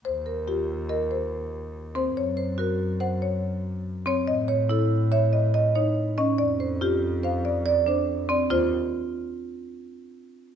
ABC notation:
X:1
M:5/4
L:1/8
Q:1/4=142
K:Fmix
V:1 name="Marimba"
c z G z e c z3 c | _d z B z _g d z3 d | e z A z =e _e z ^c z e | d z G z f d z c z d |
c z8 z |]
V:2 name="Marimba"
z B F z B z4 C | z c _G z c z4 C | z ^c =E z c z _e _E z ^C | z c F z c z d D z C |
F z8 z |]
V:3 name="Double bass" clef=bass
E,,8- E,,2 | _G,,8- G,,2 | A,,8- A,,2 | F,,8- F,,2 |
E,, z8 z |]